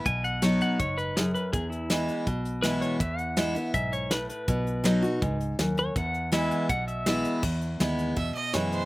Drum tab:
CC |--------|--------|--------|--------|
HH |xxxxxxxx|xxxxxxxx|xxxxxxxx|xxxxxxxx|
SD |--o---o-|--o---o-|--o---o-|--o---o-|
BD |o---o---|o---o---|o---o---|o---o---|

CC |--------|x-------|
HH |xxxxxxxx|-xxxxxxx|
SD |--o---o-|--o---o-|
BD |o---o---|o---o---|